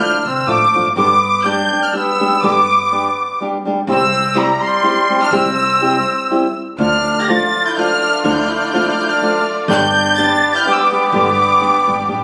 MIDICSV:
0, 0, Header, 1, 6, 480
1, 0, Start_track
1, 0, Tempo, 485437
1, 956, Time_signature, 3, 2, 24, 8
1, 8148, Tempo, 480769
1, 12138, End_track
2, 0, Start_track
2, 0, Title_t, "Violin section"
2, 0, Program_c, 0, 48
2, 0, Note_on_c, 0, 89, 80
2, 255, Note_on_c, 0, 88, 70
2, 256, Note_off_c, 0, 89, 0
2, 458, Note_off_c, 0, 88, 0
2, 478, Note_on_c, 0, 86, 84
2, 850, Note_off_c, 0, 86, 0
2, 951, Note_on_c, 0, 86, 102
2, 1401, Note_off_c, 0, 86, 0
2, 1428, Note_on_c, 0, 91, 98
2, 1804, Note_off_c, 0, 91, 0
2, 1805, Note_on_c, 0, 89, 72
2, 1917, Note_off_c, 0, 89, 0
2, 1926, Note_on_c, 0, 88, 83
2, 2370, Note_off_c, 0, 88, 0
2, 2398, Note_on_c, 0, 86, 95
2, 3353, Note_off_c, 0, 86, 0
2, 3868, Note_on_c, 0, 88, 97
2, 4294, Note_off_c, 0, 88, 0
2, 4323, Note_on_c, 0, 82, 83
2, 4575, Note_on_c, 0, 84, 94
2, 4576, Note_off_c, 0, 82, 0
2, 5155, Note_off_c, 0, 84, 0
2, 5155, Note_on_c, 0, 89, 106
2, 5262, Note_off_c, 0, 89, 0
2, 5271, Note_on_c, 0, 88, 104
2, 6450, Note_off_c, 0, 88, 0
2, 6735, Note_on_c, 0, 89, 91
2, 7112, Note_off_c, 0, 89, 0
2, 7119, Note_on_c, 0, 94, 70
2, 7185, Note_off_c, 0, 94, 0
2, 7189, Note_on_c, 0, 93, 88
2, 7561, Note_off_c, 0, 93, 0
2, 7566, Note_on_c, 0, 91, 76
2, 7672, Note_off_c, 0, 91, 0
2, 7686, Note_on_c, 0, 89, 100
2, 8134, Note_off_c, 0, 89, 0
2, 8146, Note_on_c, 0, 89, 77
2, 8228, Note_on_c, 0, 91, 69
2, 8235, Note_off_c, 0, 89, 0
2, 8319, Note_on_c, 0, 89, 72
2, 8320, Note_off_c, 0, 91, 0
2, 8401, Note_on_c, 0, 91, 64
2, 8409, Note_off_c, 0, 89, 0
2, 8479, Note_off_c, 0, 91, 0
2, 8483, Note_on_c, 0, 89, 76
2, 8556, Note_off_c, 0, 89, 0
2, 8556, Note_on_c, 0, 91, 71
2, 8629, Note_off_c, 0, 91, 0
2, 8640, Note_on_c, 0, 89, 79
2, 8718, Note_on_c, 0, 91, 67
2, 8721, Note_off_c, 0, 89, 0
2, 8805, Note_off_c, 0, 91, 0
2, 8816, Note_on_c, 0, 89, 70
2, 8897, Note_off_c, 0, 89, 0
2, 8902, Note_on_c, 0, 91, 73
2, 8969, Note_off_c, 0, 91, 0
2, 8985, Note_on_c, 0, 89, 72
2, 9383, Note_off_c, 0, 89, 0
2, 9604, Note_on_c, 0, 91, 127
2, 10044, Note_off_c, 0, 91, 0
2, 10076, Note_on_c, 0, 93, 112
2, 10443, Note_on_c, 0, 91, 90
2, 10445, Note_off_c, 0, 93, 0
2, 10468, Note_off_c, 0, 91, 0
2, 10470, Note_on_c, 0, 89, 79
2, 10497, Note_off_c, 0, 89, 0
2, 10506, Note_on_c, 0, 91, 90
2, 10556, Note_off_c, 0, 91, 0
2, 10563, Note_on_c, 0, 86, 93
2, 10633, Note_off_c, 0, 86, 0
2, 10644, Note_on_c, 0, 88, 70
2, 10703, Note_on_c, 0, 86, 76
2, 10711, Note_off_c, 0, 88, 0
2, 11026, Note_off_c, 0, 86, 0
2, 11038, Note_on_c, 0, 86, 90
2, 12138, Note_off_c, 0, 86, 0
2, 12138, End_track
3, 0, Start_track
3, 0, Title_t, "Violin section"
3, 0, Program_c, 1, 48
3, 6718, Note_on_c, 1, 74, 86
3, 6719, Note_on_c, 1, 65, 76
3, 6722, Note_on_c, 1, 57, 70
3, 9568, Note_off_c, 1, 65, 0
3, 9570, Note_off_c, 1, 57, 0
3, 9589, Note_on_c, 1, 67, 83
3, 9595, Note_on_c, 1, 59, 90
3, 12138, Note_off_c, 1, 59, 0
3, 12138, Note_off_c, 1, 67, 0
3, 12138, Note_off_c, 1, 74, 0
3, 12138, End_track
4, 0, Start_track
4, 0, Title_t, "Trumpet"
4, 0, Program_c, 2, 56
4, 0, Note_on_c, 2, 62, 79
4, 254, Note_off_c, 2, 62, 0
4, 261, Note_on_c, 2, 60, 72
4, 474, Note_on_c, 2, 57, 74
4, 489, Note_off_c, 2, 60, 0
4, 848, Note_off_c, 2, 57, 0
4, 967, Note_on_c, 2, 59, 80
4, 1436, Note_on_c, 2, 62, 84
4, 1451, Note_off_c, 2, 59, 0
4, 1818, Note_off_c, 2, 62, 0
4, 1818, Note_on_c, 2, 62, 75
4, 1923, Note_off_c, 2, 62, 0
4, 1938, Note_on_c, 2, 59, 79
4, 2417, Note_off_c, 2, 59, 0
4, 2417, Note_on_c, 2, 59, 73
4, 3362, Note_off_c, 2, 59, 0
4, 3848, Note_on_c, 2, 60, 89
4, 4331, Note_on_c, 2, 55, 75
4, 4346, Note_off_c, 2, 60, 0
4, 4593, Note_off_c, 2, 55, 0
4, 4593, Note_on_c, 2, 55, 96
4, 5161, Note_on_c, 2, 62, 88
4, 5176, Note_off_c, 2, 55, 0
4, 5262, Note_off_c, 2, 62, 0
4, 5268, Note_on_c, 2, 60, 85
4, 6448, Note_off_c, 2, 60, 0
4, 6723, Note_on_c, 2, 62, 75
4, 7127, Note_on_c, 2, 67, 53
4, 7142, Note_off_c, 2, 62, 0
4, 7212, Note_on_c, 2, 65, 84
4, 7227, Note_off_c, 2, 67, 0
4, 7565, Note_on_c, 2, 64, 64
4, 7580, Note_off_c, 2, 65, 0
4, 7686, Note_on_c, 2, 62, 62
4, 7700, Note_off_c, 2, 64, 0
4, 8152, Note_off_c, 2, 62, 0
4, 8158, Note_on_c, 2, 62, 66
4, 8235, Note_on_c, 2, 64, 56
4, 8250, Note_off_c, 2, 62, 0
4, 8310, Note_on_c, 2, 62, 70
4, 8325, Note_off_c, 2, 64, 0
4, 8394, Note_on_c, 2, 64, 61
4, 8409, Note_off_c, 2, 62, 0
4, 8479, Note_on_c, 2, 62, 52
4, 8494, Note_off_c, 2, 64, 0
4, 8549, Note_on_c, 2, 64, 43
4, 8564, Note_off_c, 2, 62, 0
4, 8612, Note_on_c, 2, 62, 53
4, 8627, Note_off_c, 2, 64, 0
4, 8707, Note_on_c, 2, 64, 62
4, 8721, Note_off_c, 2, 62, 0
4, 8794, Note_on_c, 2, 62, 49
4, 8809, Note_off_c, 2, 64, 0
4, 8886, Note_on_c, 2, 64, 50
4, 8901, Note_off_c, 2, 62, 0
4, 8970, Note_on_c, 2, 62, 85
4, 8985, Note_off_c, 2, 64, 0
4, 9375, Note_off_c, 2, 62, 0
4, 9591, Note_on_c, 2, 62, 91
4, 10065, Note_off_c, 2, 62, 0
4, 10065, Note_on_c, 2, 62, 112
4, 10440, Note_off_c, 2, 62, 0
4, 10451, Note_on_c, 2, 64, 67
4, 10475, Note_off_c, 2, 64, 0
4, 10491, Note_on_c, 2, 64, 70
4, 10555, Note_on_c, 2, 59, 81
4, 10570, Note_off_c, 2, 64, 0
4, 10632, Note_on_c, 2, 60, 58
4, 10647, Note_off_c, 2, 59, 0
4, 10713, Note_on_c, 2, 59, 89
4, 10728, Note_off_c, 2, 60, 0
4, 11034, Note_off_c, 2, 59, 0
4, 11041, Note_on_c, 2, 59, 81
4, 12138, Note_off_c, 2, 59, 0
4, 12138, End_track
5, 0, Start_track
5, 0, Title_t, "Nylon-string guitar"
5, 0, Program_c, 3, 24
5, 0, Note_on_c, 3, 53, 51
5, 0, Note_on_c, 3, 57, 60
5, 0, Note_on_c, 3, 62, 72
5, 0, Note_on_c, 3, 65, 73
5, 139, Note_off_c, 3, 57, 0
5, 140, Note_off_c, 3, 53, 0
5, 143, Note_off_c, 3, 62, 0
5, 148, Note_off_c, 3, 65, 0
5, 463, Note_on_c, 3, 53, 56
5, 475, Note_on_c, 3, 62, 49
5, 477, Note_on_c, 3, 57, 52
5, 481, Note_on_c, 3, 65, 52
5, 627, Note_off_c, 3, 53, 0
5, 632, Note_off_c, 3, 62, 0
5, 633, Note_off_c, 3, 57, 0
5, 636, Note_off_c, 3, 65, 0
5, 733, Note_on_c, 3, 53, 57
5, 738, Note_on_c, 3, 57, 55
5, 745, Note_on_c, 3, 62, 53
5, 750, Note_on_c, 3, 65, 64
5, 867, Note_off_c, 3, 53, 0
5, 869, Note_off_c, 3, 57, 0
5, 873, Note_off_c, 3, 62, 0
5, 875, Note_off_c, 3, 65, 0
5, 950, Note_on_c, 3, 43, 70
5, 957, Note_on_c, 3, 55, 74
5, 958, Note_on_c, 3, 50, 81
5, 959, Note_on_c, 3, 59, 69
5, 961, Note_on_c, 3, 62, 73
5, 966, Note_on_c, 3, 67, 78
5, 1112, Note_off_c, 3, 43, 0
5, 1115, Note_off_c, 3, 50, 0
5, 1115, Note_off_c, 3, 55, 0
5, 1116, Note_off_c, 3, 59, 0
5, 1117, Note_off_c, 3, 62, 0
5, 1120, Note_off_c, 3, 67, 0
5, 1422, Note_on_c, 3, 55, 67
5, 1431, Note_on_c, 3, 59, 56
5, 1439, Note_on_c, 3, 62, 68
5, 1444, Note_on_c, 3, 67, 71
5, 1587, Note_off_c, 3, 55, 0
5, 1592, Note_off_c, 3, 59, 0
5, 1596, Note_off_c, 3, 62, 0
5, 1598, Note_off_c, 3, 67, 0
5, 1696, Note_on_c, 3, 59, 38
5, 1700, Note_on_c, 3, 55, 46
5, 1709, Note_on_c, 3, 62, 53
5, 1711, Note_on_c, 3, 67, 50
5, 1829, Note_off_c, 3, 59, 0
5, 1831, Note_off_c, 3, 55, 0
5, 1836, Note_off_c, 3, 62, 0
5, 1837, Note_off_c, 3, 67, 0
5, 1908, Note_on_c, 3, 55, 53
5, 1913, Note_on_c, 3, 59, 53
5, 1916, Note_on_c, 3, 62, 55
5, 1921, Note_on_c, 3, 67, 60
5, 2071, Note_off_c, 3, 55, 0
5, 2074, Note_off_c, 3, 59, 0
5, 2075, Note_off_c, 3, 62, 0
5, 2078, Note_off_c, 3, 67, 0
5, 2173, Note_on_c, 3, 55, 62
5, 2181, Note_on_c, 3, 59, 44
5, 2185, Note_on_c, 3, 62, 64
5, 2186, Note_on_c, 3, 67, 68
5, 2308, Note_off_c, 3, 55, 0
5, 2312, Note_off_c, 3, 59, 0
5, 2314, Note_off_c, 3, 62, 0
5, 2315, Note_off_c, 3, 67, 0
5, 2402, Note_on_c, 3, 43, 71
5, 2404, Note_on_c, 3, 59, 84
5, 2405, Note_on_c, 3, 50, 65
5, 2407, Note_on_c, 3, 55, 83
5, 2408, Note_on_c, 3, 62, 71
5, 2414, Note_on_c, 3, 67, 74
5, 2558, Note_off_c, 3, 43, 0
5, 2559, Note_off_c, 3, 59, 0
5, 2560, Note_off_c, 3, 50, 0
5, 2560, Note_off_c, 3, 55, 0
5, 2561, Note_off_c, 3, 62, 0
5, 2564, Note_off_c, 3, 67, 0
5, 2887, Note_on_c, 3, 55, 60
5, 2891, Note_on_c, 3, 59, 59
5, 2892, Note_on_c, 3, 62, 72
5, 2904, Note_on_c, 3, 67, 77
5, 3038, Note_off_c, 3, 55, 0
5, 3041, Note_off_c, 3, 59, 0
5, 3041, Note_off_c, 3, 62, 0
5, 3047, Note_off_c, 3, 67, 0
5, 3367, Note_on_c, 3, 55, 58
5, 3378, Note_on_c, 3, 59, 57
5, 3382, Note_on_c, 3, 62, 65
5, 3385, Note_on_c, 3, 67, 74
5, 3516, Note_off_c, 3, 55, 0
5, 3521, Note_off_c, 3, 59, 0
5, 3523, Note_off_c, 3, 62, 0
5, 3525, Note_off_c, 3, 67, 0
5, 3612, Note_on_c, 3, 55, 65
5, 3625, Note_on_c, 3, 59, 66
5, 3625, Note_on_c, 3, 62, 70
5, 3633, Note_on_c, 3, 67, 74
5, 3742, Note_off_c, 3, 55, 0
5, 3748, Note_off_c, 3, 59, 0
5, 3748, Note_off_c, 3, 62, 0
5, 3752, Note_off_c, 3, 67, 0
5, 3840, Note_on_c, 3, 48, 79
5, 3840, Note_on_c, 3, 55, 76
5, 3842, Note_on_c, 3, 64, 85
5, 3845, Note_on_c, 3, 60, 70
5, 3852, Note_on_c, 3, 67, 77
5, 3990, Note_off_c, 3, 48, 0
5, 3990, Note_off_c, 3, 55, 0
5, 3991, Note_off_c, 3, 64, 0
5, 3992, Note_off_c, 3, 60, 0
5, 3996, Note_off_c, 3, 67, 0
5, 4297, Note_on_c, 3, 55, 64
5, 4301, Note_on_c, 3, 60, 60
5, 4305, Note_on_c, 3, 64, 63
5, 4317, Note_on_c, 3, 67, 74
5, 4459, Note_off_c, 3, 55, 0
5, 4461, Note_off_c, 3, 60, 0
5, 4463, Note_off_c, 3, 64, 0
5, 4469, Note_off_c, 3, 67, 0
5, 4771, Note_on_c, 3, 55, 50
5, 4779, Note_on_c, 3, 60, 49
5, 4782, Note_on_c, 3, 64, 57
5, 4788, Note_on_c, 3, 67, 62
5, 4933, Note_off_c, 3, 55, 0
5, 4937, Note_off_c, 3, 60, 0
5, 4938, Note_off_c, 3, 64, 0
5, 4941, Note_off_c, 3, 67, 0
5, 5035, Note_on_c, 3, 55, 54
5, 5038, Note_on_c, 3, 60, 56
5, 5043, Note_on_c, 3, 64, 60
5, 5048, Note_on_c, 3, 67, 59
5, 5169, Note_off_c, 3, 55, 0
5, 5171, Note_off_c, 3, 60, 0
5, 5173, Note_off_c, 3, 64, 0
5, 5175, Note_off_c, 3, 67, 0
5, 5256, Note_on_c, 3, 48, 65
5, 5264, Note_on_c, 3, 60, 85
5, 5266, Note_on_c, 3, 55, 90
5, 5268, Note_on_c, 3, 67, 73
5, 5269, Note_on_c, 3, 64, 70
5, 5414, Note_off_c, 3, 48, 0
5, 5419, Note_off_c, 3, 55, 0
5, 5419, Note_off_c, 3, 60, 0
5, 5420, Note_off_c, 3, 67, 0
5, 5421, Note_off_c, 3, 64, 0
5, 5743, Note_on_c, 3, 55, 64
5, 5752, Note_on_c, 3, 60, 69
5, 5757, Note_on_c, 3, 64, 59
5, 5758, Note_on_c, 3, 67, 69
5, 5898, Note_off_c, 3, 55, 0
5, 5902, Note_off_c, 3, 60, 0
5, 5905, Note_off_c, 3, 64, 0
5, 5906, Note_off_c, 3, 67, 0
5, 6231, Note_on_c, 3, 55, 65
5, 6239, Note_on_c, 3, 60, 51
5, 6242, Note_on_c, 3, 64, 62
5, 6246, Note_on_c, 3, 67, 59
5, 6384, Note_off_c, 3, 55, 0
5, 6388, Note_off_c, 3, 60, 0
5, 6390, Note_off_c, 3, 64, 0
5, 6391, Note_off_c, 3, 67, 0
5, 6711, Note_on_c, 3, 50, 66
5, 6716, Note_on_c, 3, 53, 70
5, 6716, Note_on_c, 3, 57, 62
5, 6722, Note_on_c, 3, 62, 74
5, 6730, Note_on_c, 3, 65, 72
5, 6866, Note_off_c, 3, 50, 0
5, 6869, Note_off_c, 3, 53, 0
5, 6869, Note_off_c, 3, 57, 0
5, 6872, Note_off_c, 3, 62, 0
5, 6876, Note_off_c, 3, 65, 0
5, 7201, Note_on_c, 3, 53, 67
5, 7206, Note_on_c, 3, 57, 72
5, 7215, Note_on_c, 3, 62, 74
5, 7220, Note_on_c, 3, 65, 82
5, 7352, Note_off_c, 3, 53, 0
5, 7355, Note_off_c, 3, 57, 0
5, 7359, Note_off_c, 3, 62, 0
5, 7362, Note_off_c, 3, 65, 0
5, 7684, Note_on_c, 3, 53, 48
5, 7690, Note_on_c, 3, 57, 52
5, 7694, Note_on_c, 3, 62, 55
5, 7700, Note_on_c, 3, 65, 65
5, 7834, Note_off_c, 3, 53, 0
5, 7837, Note_off_c, 3, 57, 0
5, 7839, Note_off_c, 3, 62, 0
5, 7842, Note_off_c, 3, 65, 0
5, 8141, Note_on_c, 3, 50, 73
5, 8144, Note_on_c, 3, 53, 61
5, 8152, Note_on_c, 3, 57, 76
5, 8152, Note_on_c, 3, 65, 77
5, 8154, Note_on_c, 3, 62, 83
5, 8303, Note_off_c, 3, 50, 0
5, 8304, Note_off_c, 3, 53, 0
5, 8309, Note_off_c, 3, 57, 0
5, 8309, Note_off_c, 3, 65, 0
5, 8310, Note_off_c, 3, 62, 0
5, 8638, Note_on_c, 3, 53, 69
5, 8646, Note_on_c, 3, 57, 75
5, 8653, Note_on_c, 3, 62, 63
5, 8653, Note_on_c, 3, 65, 74
5, 8791, Note_off_c, 3, 53, 0
5, 8795, Note_off_c, 3, 57, 0
5, 8799, Note_off_c, 3, 62, 0
5, 8799, Note_off_c, 3, 65, 0
5, 8909, Note_on_c, 3, 53, 46
5, 8913, Note_on_c, 3, 57, 46
5, 8918, Note_on_c, 3, 62, 50
5, 8920, Note_on_c, 3, 65, 47
5, 9031, Note_off_c, 3, 53, 0
5, 9034, Note_off_c, 3, 57, 0
5, 9036, Note_off_c, 3, 62, 0
5, 9037, Note_off_c, 3, 65, 0
5, 9119, Note_on_c, 3, 53, 48
5, 9125, Note_on_c, 3, 57, 55
5, 9126, Note_on_c, 3, 62, 60
5, 9139, Note_on_c, 3, 65, 58
5, 9272, Note_off_c, 3, 53, 0
5, 9275, Note_off_c, 3, 57, 0
5, 9275, Note_off_c, 3, 62, 0
5, 9282, Note_off_c, 3, 65, 0
5, 9598, Note_on_c, 3, 43, 66
5, 9598, Note_on_c, 3, 50, 69
5, 9602, Note_on_c, 3, 55, 75
5, 9602, Note_on_c, 3, 59, 76
5, 9606, Note_on_c, 3, 62, 86
5, 9608, Note_on_c, 3, 67, 85
5, 9751, Note_off_c, 3, 43, 0
5, 9751, Note_off_c, 3, 50, 0
5, 9753, Note_off_c, 3, 55, 0
5, 9753, Note_off_c, 3, 59, 0
5, 9755, Note_off_c, 3, 62, 0
5, 9756, Note_off_c, 3, 67, 0
5, 10081, Note_on_c, 3, 55, 75
5, 10084, Note_on_c, 3, 59, 71
5, 10091, Note_on_c, 3, 62, 89
5, 10101, Note_on_c, 3, 67, 70
5, 10233, Note_off_c, 3, 55, 0
5, 10235, Note_off_c, 3, 59, 0
5, 10239, Note_off_c, 3, 62, 0
5, 10244, Note_off_c, 3, 67, 0
5, 10570, Note_on_c, 3, 55, 57
5, 10572, Note_on_c, 3, 59, 54
5, 10575, Note_on_c, 3, 62, 55
5, 10587, Note_on_c, 3, 67, 61
5, 10717, Note_off_c, 3, 55, 0
5, 10718, Note_off_c, 3, 59, 0
5, 10719, Note_off_c, 3, 62, 0
5, 10726, Note_off_c, 3, 67, 0
5, 10819, Note_on_c, 3, 55, 49
5, 10825, Note_on_c, 3, 59, 61
5, 10826, Note_on_c, 3, 62, 58
5, 10834, Note_on_c, 3, 67, 58
5, 10946, Note_off_c, 3, 55, 0
5, 10948, Note_off_c, 3, 59, 0
5, 10949, Note_off_c, 3, 62, 0
5, 10953, Note_off_c, 3, 67, 0
5, 11034, Note_on_c, 3, 43, 64
5, 11040, Note_on_c, 3, 55, 82
5, 11041, Note_on_c, 3, 50, 78
5, 11042, Note_on_c, 3, 62, 82
5, 11043, Note_on_c, 3, 59, 79
5, 11043, Note_on_c, 3, 67, 93
5, 11188, Note_off_c, 3, 43, 0
5, 11191, Note_off_c, 3, 50, 0
5, 11191, Note_off_c, 3, 55, 0
5, 11192, Note_off_c, 3, 59, 0
5, 11192, Note_off_c, 3, 62, 0
5, 11193, Note_off_c, 3, 67, 0
5, 11501, Note_on_c, 3, 55, 56
5, 11509, Note_on_c, 3, 62, 73
5, 11515, Note_on_c, 3, 59, 68
5, 11515, Note_on_c, 3, 67, 63
5, 11661, Note_off_c, 3, 55, 0
5, 11666, Note_off_c, 3, 62, 0
5, 11668, Note_off_c, 3, 67, 0
5, 11669, Note_off_c, 3, 59, 0
5, 11770, Note_on_c, 3, 55, 49
5, 11776, Note_on_c, 3, 59, 57
5, 11784, Note_on_c, 3, 62, 55
5, 11786, Note_on_c, 3, 67, 51
5, 11900, Note_off_c, 3, 55, 0
5, 11904, Note_off_c, 3, 59, 0
5, 11907, Note_off_c, 3, 62, 0
5, 11909, Note_off_c, 3, 67, 0
5, 11974, Note_on_c, 3, 55, 49
5, 11983, Note_on_c, 3, 59, 62
5, 11991, Note_on_c, 3, 67, 55
5, 11992, Note_on_c, 3, 62, 55
5, 12138, Note_off_c, 3, 55, 0
5, 12138, Note_off_c, 3, 59, 0
5, 12138, Note_off_c, 3, 62, 0
5, 12138, Note_off_c, 3, 67, 0
5, 12138, End_track
6, 0, Start_track
6, 0, Title_t, "Upright bass"
6, 0, Program_c, 4, 32
6, 248, Note_on_c, 4, 48, 67
6, 448, Note_off_c, 4, 48, 0
6, 467, Note_on_c, 4, 45, 76
6, 707, Note_off_c, 4, 45, 0
6, 730, Note_on_c, 4, 43, 80
6, 931, Note_off_c, 4, 43, 0
6, 951, Note_on_c, 4, 31, 91
6, 1578, Note_off_c, 4, 31, 0
6, 2400, Note_on_c, 4, 31, 80
6, 3020, Note_off_c, 4, 31, 0
6, 3830, Note_on_c, 4, 36, 95
6, 4450, Note_off_c, 4, 36, 0
6, 5252, Note_on_c, 4, 36, 100
6, 5878, Note_off_c, 4, 36, 0
6, 6708, Note_on_c, 4, 38, 96
6, 7334, Note_off_c, 4, 38, 0
6, 8145, Note_on_c, 4, 38, 81
6, 8771, Note_off_c, 4, 38, 0
6, 9587, Note_on_c, 4, 31, 109
6, 10213, Note_off_c, 4, 31, 0
6, 11027, Note_on_c, 4, 31, 102
6, 11509, Note_off_c, 4, 31, 0
6, 11778, Note_on_c, 4, 31, 72
6, 11970, Note_off_c, 4, 31, 0
6, 11986, Note_on_c, 4, 33, 77
6, 12138, Note_off_c, 4, 33, 0
6, 12138, End_track
0, 0, End_of_file